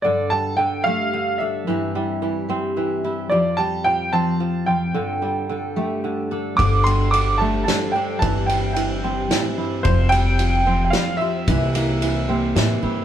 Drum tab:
RD |------|------|------|------|
SD |------|------|------|------|
BD |------|------|------|------|

RD |xxx-x-|xxx-x-|xxx-x-|xxx-x-|
SD |----o-|----o-|----o-|----o-|
BD |o-----|o-----|o-----|o-----|